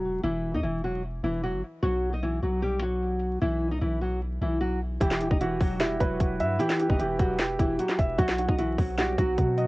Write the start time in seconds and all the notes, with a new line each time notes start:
Already playing: E1 F#3 F#4, impact
0.24 E1 E3 E4
0.54 E2 D#4 D#5
0.63 E1 E3 E4
0.84 F#3 F#4
1.23 E1 E3 E4
1.44 F#3 F#4
1.53 G1
1.83 B1 F#3 F#4
2.13 D#4 D#5
2.23 E3 E4
2.43 B1 F#3 F#4
2.62 G3 G4
2.82 F#3 F#4
3.41 B1 E3 E4
3.71 C2 D#4 D#5
3.81 B1 E3 E4
4.01 F#3 F#4
4.41 B1 E3 E4
4.61 F#3 F#4
5.00 E1 E3 E4 G4, kick, closed hi-hat
5.11 snare, clap
5.21 D#1 G4, closed hi-hat
5.30 E1 D#4 D#5, kick
5.40 E3 E4 F#4, closed hi-hat
5.60 E1 F#3 F#4, kick, open hi-hat
5.80 G3 E4 G4, snare, clap, closed hi-hat
6.00 E1 F#3 F#4 B4, kick, closed hi-hat
6.20 E1, kick, closed hi-hat
6.40 G2 E5, closed hi-hat
6.59 E3 E4 G4, closed hi-hat
6.70 snare, clap
6.80 G4, closed hi-hat
6.90 E1 D#4 D#5, kick
6.99 E1 E3 E4 G4, closed hi-hat
7.19 E1 F#3 F#4, kick, closed hi-hat
7.39 G4, snare, clap, closed hi-hat
7.59 E1 E3 E4 G4, kick, closed hi-hat
7.79 F#3 F#4, closed hi-hat
7.89 snare, clap
7.99 E1 E5, kick, closed hi-hat
8.18 B1 F#3 F#4, kick, closed hi-hat, swell
8.29 snare, clap
8.38 F#4, closed hi-hat
8.49 B1 D#4 D#5, kick
8.58 E3 E4 F#4, closed hi-hat
8.78 B1 F#3 F#4, kick, open hi-hat
8.98 G3 F#4 G4, snare, clap, closed hi-hat
9.18 B1 F#3 F#4, kick, closed hi-hat
9.38 B2, kick, closed hi-hat
9.58 D#5, closed hi-hat